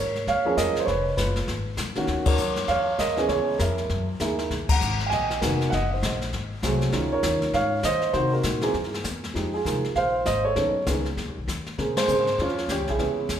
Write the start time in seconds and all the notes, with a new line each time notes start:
Already playing: G#2 A#4 C#5
0.16 snare
0.27 D#2 C#5 F5, brush sweep, kick, snare
0.45 F3 A#3 C#4 G#4
0.57 F2 A#4 D#5, kick, snare, hi-hat pedal
0.76 muted upright bass stroke, snare
0.80 C5
0.85 F1 B4 C#5, brush sweep, kick, snare
1.17 F#1 F4 B4, kick, snare, hi-hat pedal
1.36 snare
1.47 G#1, brush sweep, kick, snare
1.77 B1, kick, snare, hi-hat pedal
1.95 D#3 A#3 C#4 F#4, muted upright bass stroke, snare
2.07 D#2, brush sweep, kick, snare
2.26 A#4 C#5, muted upright bass stroke, kick, ride
2.38 F#2, hi-hat pedal
2.56 snare
2.68 F2 C#5 F5, brush sweep, kick, snare
2.98 D#2 A#4 D#5, kick, snare, hi-hat pedal
3.09 snare
3.16 E3 B3 C#4 G#4, snare
3.19 snare
3.29 C#2 G#4 C#5, brush sweep, kick, snare
3.59 F2 E4 A#4, kick, snare, hi-hat pedal
3.78 snare
3.89 F#2, brush sweep, kick, snare
4.20 D#2 A#3 D#4 E4 G#4, kick, snare, hi-hat pedal
4.39 snare
4.51 B1, brush sweep, kick, snare
4.69 F#5 A#5, kick, ride
4.81 G#1, hi-hat pedal
5.00 snare
5.06 G5 G#5
5.11 A#1 D#5, brush sweep, kick, snare
5.30 snare
5.41 F1 D#3 A#3 B3 F#4, kick, snare, hi-hat pedal
5.61 snare
5.70 F#1 F#5, brush sweep, kick, snare
5.74 D#5
5.90 C5 D#5
6.02 A#1, kick, snare, hi-hat pedal
6.21 snare
6.33 G#1, brush sweep, kick, snare
6.62 C2 F#3 A3 C4 G#4, kick, snare, hi-hat pedal
6.81 snare
6.92 C#2 D#3 C#4 D#4 F4, brush sweep, kick, snare
7.13 A#4 C#5
7.23 D#2, kick, snare, hi-hat pedal
7.42 muted upright bass stroke, snare
7.53 G#2 C#5 F5, brush sweep, kick, snare
7.83 D#3 C5 D#5, kick, snare, hi-hat pedal
8.02 snare
8.13 C3 D#3 A#3 C4 F#4 C5, brush sweep, kick, snare
8.33 F#4 A#4
8.43 A#2, kick, snare, hi-hat pedal
8.61 E3 A#3 C4 G#4, snare
8.74 G2, brush sweep, kick, snare
8.84 snare
8.94 snare
9.04 E2, kick, snare, hi-hat pedal
9.24 snare
9.34 F2 F3 G#3 D#4 G4, brush sweep, kick, snare
9.54 F4 G#4
9.65 C2 F3 G#3 D#4 A#4, kick, snare, hi-hat pedal
9.84 muted upright bass stroke, snare
9.95 A#1 C5 F5, brush sweep, kick, snare
10.25 G#1 C5 D#5, kick, snare, hi-hat pedal
10.45 A4 C#5
10.56 B1 D#3 B3 C#4 A4, brush sweep, kick, snare
10.86 C#2 D#3 B3 C#4 G#4, kick, snare, hi-hat pedal
11.05 snare
11.17 F2, brush sweep, kick, snare
11.27 D#2
11.38 B1
11.48 D#2, kick, snare, hi-hat pedal
11.66 muted upright bass stroke, snare
11.78 A#2 C#3 A#3 C4 G#4, brush sweep, kick, snare
11.97 G#4 C5, snare, ride
12.08 G#2 C#3 A#3 C4 G#4, hi-hat pedal
12.27 snare
12.38 F2 C#4 F4, brush sweep, kick, snare
12.49 snare
12.58 snare
12.69 D#2 C#4 G4, kick, snare, hi-hat pedal
12.79 C#2
12.87 A#1 E4 G#4, snare
12.98 C#2 E3 B3 C#4 G#4, brush sweep, kick, snare
13.29 E2, kick, snare, hi-hat pedal